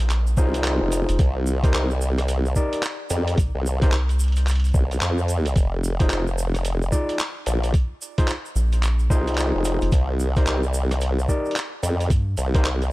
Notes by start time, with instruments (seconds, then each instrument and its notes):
Already playing: analog synth bass A#1, downlifter
0.10 clap, closed hi-hat, cabasa
0.27 cabasa
0.37 wobble bass C2, tine electric piano D#4 F4 G#4 C5, kick, cabasa
0.54 closed hi-hat, cabasa
0.64 clap, closed hi-hat, cabasa
0.81 wobble bass F1
0.92 closed hi-hat, cabasa
1.09 analog synth bass F1, closed hi-hat, cabasa
1.19 wobble bass C2, kick, closed hi-hat, cabasa
1.46 cabasa
1.64 tine electric piano D#4 G4 A#4 C5, kick, closed hi-hat, cabasa
1.74 wobble bass C2, clap, closed hi-hat, cabasa
1.90 cabasa
2.01 cabasa
2.18 cross-stick, closed hi-hat, cabasa
2.28 closed hi-hat, cabasa
2.46 cabasa
2.56 tine electric piano D#4 G4 A#4 D5, kick, cabasa
2.73 closed hi-hat, cabasa
2.83 clap, closed hi-hat, cabasa
3.10 wobble bass F2, closed hi-hat, cabasa
3.28 closed hi-hat, cabasa
3.38 analog synth bass C2, kick, closed hi-hat, cabasa
3.55 wobble bass C2
3.66 cabasa
3.82 tine electric piano D#4 G4 A#4 C5, kick, closed hi-hat, cabasa
3.92 analog synth bass C2, clap, closed hi-hat, cabasa
4.09 closed hi-hat, cabasa
4.19 closed hi-hat, cabasa
4.24 closed hi-hat
4.28 closed hi-hat
4.32 closed hi-hat, cabasa
4.37 closed hi-hat
4.47 clap, closed hi-hat, cabasa
4.51 closed hi-hat
4.55 closed hi-hat
4.60 closed hi-hat
4.64 closed hi-hat, cabasa
4.67 closed hi-hat
4.69 closed hi-hat
4.72 wobble bass C2, kick, closed hi-hat, cabasa
4.91 closed hi-hat, cabasa
5.01 wobble bass F2, clap, closed hi-hat, cabasa
5.18 cabasa
5.28 closed hi-hat, cabasa
5.46 closed hi-hat, cabasa
5.56 wobble bass F1, kick, closed hi-hat, cabasa
5.84 cabasa
6.00 tine electric piano D#4 F4 G#4 C5, kick, closed hi-hat, cabasa
6.10 wobble bass F1, clap, closed hi-hat, cabasa
6.27 cabasa
6.38 cabasa
6.55 cross-stick, closed hi-hat, cabasa
6.65 closed hi-hat, cabasa
6.82 cabasa
6.92 tine electric piano D#4 F4 G#4 D5, kick, cabasa
7.09 closed hi-hat, cabasa
7.19 clap, closed hi-hat, cabasa
7.46 wobble bass A#1, closed hi-hat, cabasa
7.63 closed hi-hat, cabasa
7.74 kick, closed hi-hat, cabasa
8.01 cabasa
8.18 tine electric piano D#4 F4 G#4 C5, kick, closed hi-hat, cabasa
8.28 clap, closed hi-hat, cabasa
8.46 cabasa
8.56 analog synth bass A#1, cabasa
8.72 closed hi-hat, cabasa
8.83 clap, closed hi-hat, cabasa
8.99 cabasa
9.10 wobble bass C2, tine electric piano D#4 F4 G#4 C5, kick, cabasa
9.27 closed hi-hat, cabasa
9.34 clap, closed hi-hat
9.38 closed hi-hat, cabasa
9.55 wobble bass F1
9.64 closed hi-hat, cabasa
9.81 analog synth bass F1, closed hi-hat, cabasa
9.92 wobble bass C2, kick, closed hi-hat, cabasa
10.19 cabasa
10.36 tine electric piano D#4 G4 A#4 C5, kick, closed hi-hat, cabasa
10.46 wobble bass C2, clap, closed hi-hat, cabasa
10.63 cabasa
10.74 cabasa
10.91 cross-stick, closed hi-hat, cabasa
11.01 closed hi-hat, cabasa
11.19 cabasa
11.28 tine electric piano D#4 G4 A#4 D5, kick, cabasa
11.45 cabasa
11.51 closed hi-hat
11.56 clap, closed hi-hat, cabasa
11.83 wobble bass F2, closed hi-hat, cabasa
12.00 closed hi-hat, cabasa
12.10 analog synth bass G2, kick, closed hi-hat, cabasa
12.37 wobble bass C2, closed hi-hat, cabasa
12.54 tine electric piano D#4 G4 A#4 C5, kick, closed hi-hat, cabasa
12.64 wobble bass C2, clap, closed hi-hat, cabasa
12.82 closed hi-hat, cabasa